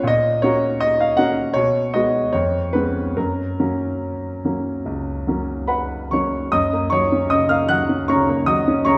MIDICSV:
0, 0, Header, 1, 2, 480
1, 0, Start_track
1, 0, Key_signature, 6, "major"
1, 0, Tempo, 730816
1, 60, Time_signature, 4, 2, 24, 8
1, 1020, Tempo, 779221
1, 1500, Tempo, 836820
1, 3900, Tempo, 771208
1, 5433, End_track
2, 0, Start_track
2, 0, Title_t, "Grand piano"
2, 0, Program_c, 0, 0
2, 0, Control_c, 0, 64, 127
2, 0, Note_on_c, 0, 49, 38
2, 0, Note_on_c, 0, 59, 37
2, 0, Note_on_c, 0, 61, 37
2, 0, Note_on_c, 0, 65, 44
2, 0, Note_on_c, 0, 71, 73
2, 0, Note_on_c, 0, 73, 76
2, 22, Note_on_c, 0, 46, 49
2, 49, Note_on_c, 0, 75, 77
2, 70, Control_c, 0, 64, 0
2, 73, Note_off_c, 0, 65, 0
2, 74, Note_off_c, 0, 49, 0
2, 75, Note_off_c, 0, 71, 0
2, 77, Note_off_c, 0, 73, 0
2, 78, Note_off_c, 0, 59, 0
2, 78, Note_off_c, 0, 61, 0
2, 173, Control_c, 0, 64, 127
2, 275, Note_off_c, 0, 46, 0
2, 277, Note_on_c, 0, 73, 75
2, 284, Note_on_c, 0, 58, 40
2, 287, Note_on_c, 0, 61, 42
2, 292, Note_on_c, 0, 66, 44
2, 297, Note_off_c, 0, 75, 0
2, 527, Note_off_c, 0, 73, 0
2, 529, Note_on_c, 0, 75, 84
2, 652, Note_off_c, 0, 75, 0
2, 660, Note_on_c, 0, 77, 64
2, 741, Note_off_c, 0, 58, 0
2, 743, Note_off_c, 0, 61, 0
2, 745, Note_off_c, 0, 66, 0
2, 767, Note_on_c, 0, 78, 75
2, 771, Note_on_c, 0, 58, 37
2, 775, Note_on_c, 0, 66, 40
2, 778, Note_off_c, 0, 77, 0
2, 780, Note_on_c, 0, 61, 39
2, 992, Note_off_c, 0, 58, 0
2, 994, Note_off_c, 0, 66, 0
2, 997, Note_off_c, 0, 61, 0
2, 1008, Note_on_c, 0, 73, 80
2, 1014, Note_off_c, 0, 78, 0
2, 1023, Note_on_c, 0, 47, 50
2, 1031, Control_c, 0, 64, 0
2, 1125, Control_c, 0, 64, 127
2, 1250, Note_off_c, 0, 47, 0
2, 1250, Note_off_c, 0, 73, 0
2, 1256, Note_on_c, 0, 75, 66
2, 1264, Note_on_c, 0, 56, 34
2, 1267, Note_on_c, 0, 59, 34
2, 1270, Note_on_c, 0, 66, 40
2, 1480, Note_off_c, 0, 56, 0
2, 1482, Note_off_c, 0, 59, 0
2, 1483, Note_off_c, 0, 66, 0
2, 1496, Note_on_c, 0, 73, 65
2, 1500, Note_off_c, 0, 75, 0
2, 1504, Note_on_c, 0, 41, 45
2, 1509, Control_c, 0, 64, 0
2, 1624, Control_c, 0, 64, 127
2, 1728, Note_on_c, 0, 71, 61
2, 1731, Note_off_c, 0, 41, 0
2, 1733, Note_off_c, 0, 73, 0
2, 1738, Note_on_c, 0, 56, 30
2, 1739, Note_on_c, 0, 59, 31
2, 1740, Note_on_c, 0, 61, 33
2, 1958, Note_off_c, 0, 56, 0
2, 1958, Note_off_c, 0, 59, 0
2, 1959, Note_off_c, 0, 61, 0
2, 1976, Note_off_c, 0, 71, 0
2, 1979, Note_on_c, 0, 70, 52
2, 1984, Note_on_c, 0, 42, 40
2, 1992, Control_c, 0, 64, 0
2, 2110, Control_c, 0, 64, 127
2, 2222, Note_off_c, 0, 42, 0
2, 2225, Note_on_c, 0, 61, 36
2, 2226, Note_on_c, 0, 54, 28
2, 2230, Note_on_c, 0, 58, 30
2, 2682, Note_off_c, 0, 61, 0
2, 2683, Note_off_c, 0, 54, 0
2, 2685, Note_off_c, 0, 58, 0
2, 2713, Note_on_c, 0, 54, 25
2, 2715, Note_on_c, 0, 58, 29
2, 2716, Note_on_c, 0, 61, 30
2, 2925, Note_off_c, 0, 54, 0
2, 2926, Note_off_c, 0, 58, 0
2, 2926, Note_off_c, 0, 61, 0
2, 2948, Note_on_c, 0, 37, 33
2, 3179, Note_off_c, 0, 37, 0
2, 3186, Note_on_c, 0, 54, 27
2, 3192, Note_on_c, 0, 58, 25
2, 3193, Note_on_c, 0, 61, 29
2, 3417, Note_on_c, 0, 83, 52
2, 3420, Note_on_c, 0, 71, 44
2, 3421, Note_on_c, 0, 78, 43
2, 3423, Note_off_c, 0, 70, 0
2, 3641, Note_off_c, 0, 54, 0
2, 3644, Note_off_c, 0, 58, 0
2, 3645, Note_off_c, 0, 61, 0
2, 3645, Note_off_c, 0, 71, 0
2, 3646, Note_off_c, 0, 78, 0
2, 3661, Note_off_c, 0, 83, 0
2, 3667, Note_on_c, 0, 85, 57
2, 3672, Note_on_c, 0, 54, 28
2, 3680, Note_on_c, 0, 73, 45
2, 3681, Note_on_c, 0, 58, 27
2, 3683, Note_on_c, 0, 61, 30
2, 3882, Note_off_c, 0, 54, 0
2, 3887, Note_off_c, 0, 58, 0
2, 3888, Note_off_c, 0, 61, 0
2, 3893, Note_off_c, 0, 73, 0
2, 3901, Note_on_c, 0, 87, 68
2, 3903, Note_off_c, 0, 85, 0
2, 3906, Note_on_c, 0, 42, 43
2, 3908, Note_on_c, 0, 75, 55
2, 3911, Control_c, 0, 64, 0
2, 4006, Control_c, 0, 64, 127
2, 4034, Note_on_c, 0, 58, 36
2, 4134, Note_off_c, 0, 75, 0
2, 4138, Note_on_c, 0, 85, 78
2, 4147, Note_off_c, 0, 87, 0
2, 4154, Note_on_c, 0, 54, 36
2, 4154, Note_on_c, 0, 73, 61
2, 4224, Note_off_c, 0, 58, 0
2, 4277, Note_on_c, 0, 61, 38
2, 4343, Note_off_c, 0, 54, 0
2, 4374, Note_off_c, 0, 73, 0
2, 4383, Note_off_c, 0, 85, 0
2, 4388, Note_on_c, 0, 87, 72
2, 4392, Note_on_c, 0, 75, 52
2, 4393, Note_on_c, 0, 49, 39
2, 4463, Note_off_c, 0, 61, 0
2, 4501, Note_off_c, 0, 75, 0
2, 4507, Note_off_c, 0, 87, 0
2, 4507, Note_on_c, 0, 89, 67
2, 4510, Note_on_c, 0, 58, 29
2, 4517, Note_on_c, 0, 77, 48
2, 4581, Note_off_c, 0, 49, 0
2, 4624, Note_off_c, 0, 77, 0
2, 4627, Note_off_c, 0, 89, 0
2, 4628, Note_on_c, 0, 90, 77
2, 4636, Note_on_c, 0, 54, 35
2, 4637, Note_on_c, 0, 78, 53
2, 4701, Note_off_c, 0, 58, 0
2, 4756, Note_on_c, 0, 61, 33
2, 4825, Note_off_c, 0, 54, 0
2, 4847, Note_off_c, 0, 42, 0
2, 4858, Note_off_c, 0, 78, 0
2, 4870, Note_off_c, 0, 90, 0
2, 4874, Note_on_c, 0, 85, 75
2, 4883, Note_on_c, 0, 49, 41
2, 4884, Note_on_c, 0, 73, 55
2, 4884, Note_on_c, 0, 82, 58
2, 4946, Note_off_c, 0, 61, 0
2, 5004, Note_on_c, 0, 58, 42
2, 5069, Note_off_c, 0, 49, 0
2, 5100, Note_off_c, 0, 73, 0
2, 5100, Note_off_c, 0, 82, 0
2, 5112, Note_off_c, 0, 85, 0
2, 5112, Note_on_c, 0, 87, 73
2, 5115, Note_on_c, 0, 54, 36
2, 5120, Note_on_c, 0, 75, 51
2, 5187, Note_off_c, 0, 58, 0
2, 5245, Note_on_c, 0, 61, 46
2, 5300, Note_off_c, 0, 54, 0
2, 5333, Note_off_c, 0, 75, 0
2, 5345, Note_off_c, 0, 87, 0
2, 5351, Note_on_c, 0, 85, 78
2, 5358, Note_on_c, 0, 82, 58
2, 5360, Note_on_c, 0, 73, 62
2, 5363, Note_on_c, 0, 49, 47
2, 5422, Note_off_c, 0, 61, 0
2, 5433, Note_off_c, 0, 49, 0
2, 5433, Note_off_c, 0, 73, 0
2, 5433, Note_off_c, 0, 82, 0
2, 5433, Note_off_c, 0, 85, 0
2, 5433, End_track
0, 0, End_of_file